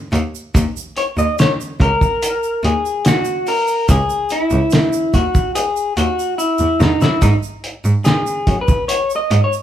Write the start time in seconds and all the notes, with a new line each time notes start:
0.12 D#2, closed hi-hat, shaker
0.35 shaker
0.55 D#2, kick, closed hi-hat, shaker
0.77 shaker
0.96 C#5, closed hi-hat
1.17 D#2 D#5, shaker
1.38 C#5, snare, closed hi-hat, shaker
1.61 shaker
1.80 C#2 A#4, kick, closed hi-hat
2.01 kick, shaker
2.23 closed hi-hat, shaker
2.43 shaker
2.64 D#2 G#4, closed hi-hat
2.86 shaker
3.05 F#4, snare, closed hi-hat, shaker
3.25 shaker
3.47 A#4, open hi-hat, shaker
3.68 shaker
3.89 C#2 G#4, kick, closed hi-hat, shaker
4.10 shaker
4.29 E4, closed hi-hat, shaker
4.50 C#2, shaker
4.71 snare, closed hi-hat, shaker
4.93 shaker
5.14 D#2 F#4, kick, closed hi-hat, shaker
5.35 kick, shaker
5.55 G#4, closed hi-hat, shaker
5.76 shaker
5.97 D#2 F#4, closed hi-hat, shaker
6.19 shaker
6.38 E4, shaker
6.58 E2, shaker
6.80 E2 D#4, snare, shaker
7.01 F#2 E4, snare, shaker
7.22 G#2 D#4, kick, closed hi-hat, shaker
7.43 shaker
7.64 closed hi-hat
7.85 G#2, shaker
8.05 G#4, snare, closed hi-hat, shaker
8.27 shaker
8.47 F#2, kick, closed hi-hat
8.61 B4
8.68 kick, shaker
8.88 C#5, closed hi-hat, shaker
9.10 shaker
9.16 D#5
9.31 G#2, closed hi-hat
9.44 C#5
9.53 shaker